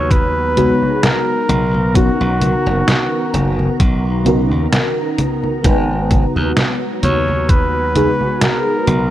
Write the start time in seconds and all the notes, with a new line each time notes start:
Already playing: D#2 F#3 G#3 B3 D#4 F#4 B4 C#5 A#5
0.11 B4, kick, closed hi-hat, high conga
0.56 G#3 B3 D#4 F#4 G#4, closed hi-hat, high conga
0.82 high conga
1.03 A#4, snare, closed hi-hat, high conga
1.49 B1 D#3, closed hi-hat, high conga
1.74 high conga
1.94 B3 C#4 D#4 F#4 A#4, kick, closed hi-hat, high conga
2.21 B1
2.41 closed hi-hat, high conga
2.66 F#1, high conga
2.88 snare, closed hi-hat, high conga
3.34 F#1, closed hi-hat, high conga
3.59 high conga
3.80 B1, kick, closed hi-hat, high conga
4.25 B3 C#4 D#4 F#4 A#4, closed hi-hat, high conga
4.51 D#2, high conga
4.73 snare, closed hi-hat, high conga
5.18 closed hi-hat, high conga
5.44 high conga
5.63 G#1 F#3 G#3 B3 D#4 F#4 B4, kick, closed hi-hat, high conga
6.11 kick, closed hi-hat, high conga
6.36 D#2, high conga
6.57 snare, closed hi-hat, high conga
7.03 D#2 C#5, closed hi-hat, high conga
7.28 high conga
7.49 B4, kick, closed hi-hat, high conga
7.95 G#3 B3 D#4 F#4 G#4, closed hi-hat, high conga
8.21 high conga
8.41 A#4, snare, closed hi-hat, high conga
8.87 B1 D#3, closed hi-hat, high conga